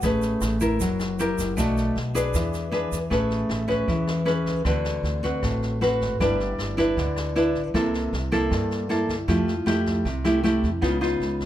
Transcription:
0.02 upright bass A1, nylon-string guitar A3 C#4 G#4 B4, kick, cross-stick, snare, shaker
0.22 snare, shaker
0.41 upright bass A1, cross-stick, snare, shaker
0.61 nylon-string guitar E4 A#4, kick, snare, shaker
0.80 upright bass F#1, nylon-string guitar F#3, kick, snare, shaker
0.99 cross-stick, snare, shaker
1.19 nylon-string guitar E4 G4 A#4, snare, shaker
1.38 upright bass F#1, kick, snare, shaker
1.57 upright bass B1, nylon-string guitar B2 A3 D4 F#4, kick, cross-stick, snare, shaker
1.77 snare, shaker
1.96 upright bass B1, snare
2.15 nylon-string guitar D4 G#4 B4, kick, snare, shaker
2.34 upright bass E2, nylon-string guitar E3, kick, cross-stick, snare, shaker
2.54 snare, shaker
2.71 nylon-string guitar D4 G#4 B4, snare
2.92 upright bass E2, kick, snare, shaker
3.10 upright bass A1, nylon-string guitar A3 C#4 G#4 B4, kick, cross-stick, snare
3.30 snare
3.49 upright bass A1, cross-stick, snare
3.68 nylon-string guitar C#4 G#4 B4, kick, snare
3.88 upright bass E2, nylon-string guitar E3, kick, snare
4.07 cross-stick, snare
4.25 nylon-string guitar C#4 G#4 B4, snare
4.46 upright bass C#2, kick, snare
4.65 upright bass D2, nylon-string guitar D3 C4 F#4 B4, kick, cross-stick, snare
4.84 snare
5.03 upright bass D2, snare
5.23 nylon-string guitar C4 F#4 B4, kick, snare
5.43 upright bass A1, nylon-string guitar A2, kick, cross-stick, snare
5.62 snare
5.81 nylon-string guitar C4 F#4 B4, snare
6.01 upright bass G#1, kick, snare
6.20 upright bass G1, nylon-string guitar G3 D4 E4 B4, kick, cross-stick, snare
6.40 snare
6.59 upright bass G1, cross-stick, snare
6.77 nylon-string guitar D4 E4 B4, kick, snare
6.97 upright bass D2, nylon-string guitar D3, kick, snare
7.16 cross-stick, snare
7.36 nylon-string guitar D4 E4 B4, snare
7.55 upright bass A1, kick, snare
7.74 upright bass C2, nylon-string guitar C3 A#3 E4 A4, kick, cross-stick, snare
7.94 snare
8.13 upright bass C2, snare
8.32 nylon-string guitar A#3 E4 A4, kick, snare
8.50 nylon-string guitar G2, upright bass G2, kick, cross-stick, snare
8.71 snare
8.89 nylon-string guitar A#3 E4 A4, snare
9.09 upright bass D2, kick, snare
9.28 upright bass F2, nylon-string guitar F3 A3 E4 G4, kick, cross-stick, snare
9.48 snare
9.66 upright bass F2, nylon-string guitar A3 E4 G4, cross-stick, snare
9.86 kick, snare
10.05 upright bass C2, nylon-string guitar C3, kick, snare
10.24 nylon-string guitar A3 E4 G4, cross-stick, snare
10.43 nylon-string guitar A3 E4 G4, snare
10.63 upright bass F2, kick, snare
10.81 upright bass C#2, nylon-string guitar C#3 B3 D#4 F4, kick, cross-stick, snare
11.01 nylon-string guitar B3 D#4 F4, snare
11.20 upright bass C#2, snare
11.40 kick, snare

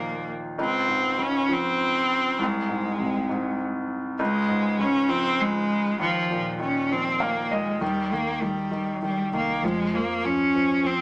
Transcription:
Already playing: grand piano D#2 A#2 D#3 F3, cello A#3
0.58 grand piano C#2, cello C4
0.88 grand piano G#2
1.19 grand piano C#3, cello C#4
1.49 grand piano F3
1.53 cello C4
2.39 grand piano C2, cello G#3
2.69 grand piano G#2
2.99 grand piano C3
3.29 grand piano G#2
4.19 grand piano C#2, cello G#3
4.49 grand piano G#2
4.79 grand piano C#3, cello C#4
5.08 grand piano F3, cello C4
5.40 cello G#3
6.00 grand piano D#2, cello F3
6.31 grand piano A#2
6.60 grand piano D#3, cello C#4
6.90 grand piano F3, cello C4
7.20 cello A#3, grand piano F5
7.51 cello G#3, grand piano D#5
7.81 fingered electric bass D#2, grand piano D#3, cello G3
8.12 grand piano D#3, cello A#3
8.42 grand piano D#3, cello G3
8.72 grand piano D#3
9.03 grand piano D#3, cello G3
9.32 fingered electric bass C2, grand piano D#3, cello A#3
9.62 fingered electric bass F2, grand piano F3, cello G#3
9.94 grand piano F3, cello A#3
10.24 grand piano F3, cello C#4
10.55 grand piano F3
10.83 grand piano F3, cello C4

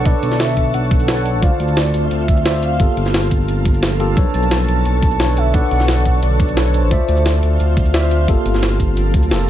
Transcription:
Already playing: ambient pad D3 A4 C#6, tine electric piano D4 A4 B4 C#5
0.04 analog synth bass B1, tine electric piano D4 A4 B4 D5, soft synth lead D5, kick, closed hi-hat, cabasa
0.23 analog synth bass B1, closed hi-hat, cabasa
0.32 snare, cabasa
0.40 soft synth lead E5, snare, closed hi-hat, cabasa
0.57 analog synth bass B1, kick, closed hi-hat
0.74 analog synth bass B1, soft synth lead F#5, closed hi-hat, cabasa
0.91 kick, closed hi-hat, cabasa
1.00 cabasa
1.08 analog synth bass B1, tine electric piano D4 A4 B4 C#5, snare, closed hi-hat
1.26 closed hi-hat, cabasa
1.34 analog synth bass A1
1.41 analog synth bass D2, tine electric piano F4 C5 D5, soft synth lead F5, kick, closed hi-hat, cabasa
1.60 analog synth bass D2, closed hi-hat, cabasa
1.69 cabasa
1.77 soft synth lead D5, snare, closed hi-hat, cabasa
1.94 analog synth bass D2, closed hi-hat
2.05 soft synth lead F5
2.11 analog synth bass D2, soft synth lead E5, closed hi-hat, cabasa
2.28 kick, closed hi-hat, cabasa
2.37 cabasa
2.45 tine electric piano F4 C5 D5 E5, snare, closed hi-hat
2.63 soft synth lead F5, closed hi-hat, cabasa
2.79 analog synth bass G1, tine electric piano A#3 F4 G4 A4, ambient pad A4, kick, closed hi-hat, cabasa
2.97 analog synth bass G1, closed hi-hat, cabasa
3.06 snare, cabasa
3.14 snare, closed hi-hat, cabasa
3.31 analog synth bass G1, kick, closed hi-hat
3.48 analog synth bass G1, closed hi-hat, cabasa
3.65 kick, closed hi-hat, cabasa
3.74 cabasa
3.83 analog synth bass G1, snare, closed hi-hat
3.99 tine electric piano A#3 F4 G4 A4, closed hi-hat, cabasa
4.16 analog synth bass B1, ambient pad D3 C#6, tine electric piano D4 A4 B4 C#5, kick, closed hi-hat, cabasa
4.34 analog synth bass B1, soft synth lead A5, closed hi-hat, cabasa
4.43 cabasa
4.51 snare, closed hi-hat, cabasa
4.68 analog synth bass B1, closed hi-hat
4.85 analog synth bass B1, soft synth lead A5, closed hi-hat, cabasa
5.03 kick, closed hi-hat, cabasa
5.12 cabasa
5.19 tine electric piano D4 A4 B4 C#5, snare, closed hi-hat
5.37 soft synth lead E5, closed hi-hat, cabasa
5.53 analog synth bass B1, tine electric piano D4 A4 B4 D5, soft synth lead F#5, kick, closed hi-hat, cabasa
5.71 analog synth bass B1, closed hi-hat, cabasa
5.80 snare, cabasa
5.88 soft synth lead F#5, snare, closed hi-hat, cabasa
6.05 analog synth bass B1, kick, closed hi-hat
6.23 analog synth bass B1, soft synth lead D5, closed hi-hat, cabasa
6.40 kick, closed hi-hat, cabasa
6.49 cabasa
6.57 analog synth bass B1, tine electric piano D4 A4 B4 C#5, snare, closed hi-hat
6.74 soft synth lead C5, closed hi-hat, cabasa
6.83 analog synth bass A1
6.90 analog synth bass D2, tine electric piano F4 C5 D5 E5, kick, closed hi-hat, cabasa
7.08 analog synth bass D2, closed hi-hat, cabasa
7.17 cabasa
7.26 snare, closed hi-hat, cabasa
7.43 analog synth bass D2, closed hi-hat
7.60 analog synth bass D2, closed hi-hat, cabasa
7.77 kick, closed hi-hat, cabasa
7.86 cabasa
7.94 tine electric piano F4 C5 D5 E5, snare, closed hi-hat
8.11 closed hi-hat, cabasa
8.27 analog synth bass G1, tine electric piano A#3 F4 G4 A4, ambient pad A4, kick, closed hi-hat, cabasa
8.46 analog synth bass G1, closed hi-hat, cabasa
8.55 snare, cabasa
8.63 snare, closed hi-hat, cabasa
8.80 analog synth bass G1, kick, closed hi-hat, cabasa
8.97 analog synth bass G1, closed hi-hat, cabasa
9.14 analog synth bass D2, kick, closed hi-hat, cabasa
9.23 cabasa
9.31 analog synth bass F1, tine electric piano A#3 F4 G4 A4, snare, closed hi-hat, cabasa

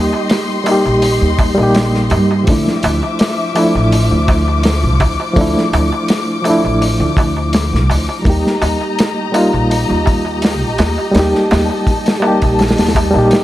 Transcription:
Already playing: upright bass D#2, reed electric piano G3 A#3 D#4 G4, string section G4 D#5 C6
0.13 darbuka tek
0.30 snare, open hi-hat, darbuka tek
0.64 reed electric piano G3 A#3, open hi-hat, darbuka tek
0.69 reed electric piano D#4 G4
0.85 upright bass A#1, darbuka tek
1.02 open hi-hat, darbuka tek
1.22 upright bass D#2
1.38 kick, open hi-hat, darbuka tek
1.55 upright bass A#1, reed electric piano G3 A#3, darbuka tek
1.60 reed electric piano D#4 G4
1.74 snare, open hi-hat, darbuka tek
1.95 snare
2.10 upright bass G2, open hi-hat, darbuka tek
2.31 darbuka tek
2.44 reed electric piano F3 A3, string section F3 E5 D6, kick, open hi-hat
2.48 upright bass D2, reed electric piano D4 E4, darbuka tek
2.67 snare
2.83 upright bass D2, open hi-hat, darbuka tek
3.03 darbuka tek
3.19 snare, open hi-hat, darbuka tek
3.55 reed electric piano F3 A3 D4 E4, open hi-hat, darbuka tek
3.75 upright bass A1, darbuka tek
3.92 open hi-hat, darbuka tek
4.11 upright bass D2
4.28 kick, open hi-hat, darbuka tek
4.48 darbuka tek
4.63 snare, open hi-hat, darbuka tek
4.83 upright bass C2
5.00 upright bass D2, kick, open hi-hat, darbuka tek
5.20 darbuka tek
5.33 upright bass D2, reed electric piano F3 A3, kick, open hi-hat, darbuka tek
5.38 reed electric piano D4 E4
5.58 snare
5.73 upright bass D2, open hi-hat, darbuka tek
5.92 darbuka tek
6.08 snare, open hi-hat, darbuka tek
6.42 reed electric piano F3 A3, open hi-hat, darbuka tek
6.47 reed electric piano D4 E4
6.64 upright bass A1, darbuka tek
6.81 open hi-hat, darbuka tek
7.00 upright bass D2
7.17 kick, open hi-hat, darbuka tek
7.37 darbuka tek
7.53 snare, open hi-hat, darbuka tek
7.73 upright bass C2, snare
7.90 upright bass D2, open hi-hat, darbuka tek
8.09 darbuka tek
8.22 upright bass D#2, reed electric piano G3 A#3, string section G4 D#5 A#5, kick, darbuka tek
8.26 reed electric piano D#4 G4, open hi-hat
8.47 snare
8.62 upright bass D#2, open hi-hat, darbuka tek
8.81 darbuka tek
8.98 snare, open hi-hat, darbuka tek
9.32 reed electric piano G3 A#3 D#4, open hi-hat, darbuka tek
9.36 reed electric piano F4
9.53 upright bass A#1, darbuka tek
9.70 open hi-hat, darbuka tek
9.90 upright bass D#2
10.06 kick, open hi-hat, darbuka tek
10.25 darbuka tek
10.42 snare, open hi-hat, darbuka tek
10.62 upright bass A#1
10.78 upright bass D#2, snare, open hi-hat, darbuka tek
10.98 darbuka tek
11.11 upright bass D#2, reed electric piano G3 A#3, string section A5, open hi-hat, darbuka tek
11.16 reed electric piano D#4 G4, snare
11.35 snare
11.51 upright bass D#2, snare, open hi-hat, darbuka tek
11.70 darbuka tek
11.87 kick, open hi-hat, darbuka tek
12.06 snare, open hi-hat
12.20 reed electric piano G3 A#3, darbuka tek
12.25 reed electric piano D#4 G4
12.42 upright bass A#1, kick, open hi-hat, darbuka tek
12.59 snare, open hi-hat, darbuka tek
12.68 snare, open hi-hat
12.78 upright bass D#2, snare, open hi-hat
12.86 snare, open hi-hat
12.95 kick, open hi-hat, darbuka tek
13.11 upright bass A#1, reed electric piano G3 A#3, darbuka tek
13.16 reed electric piano D#4 G4
13.31 snare, open hi-hat, darbuka tek

